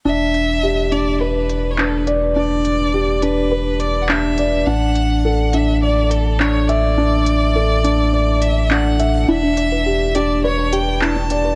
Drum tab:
HH |-x-x-x-x|-x-x-x-x|-x-x-x-x|-x-x-x-x|
CP |------x-|------x-|------x-|------x-|

HH |-x-x-x-x|
CP |------x-|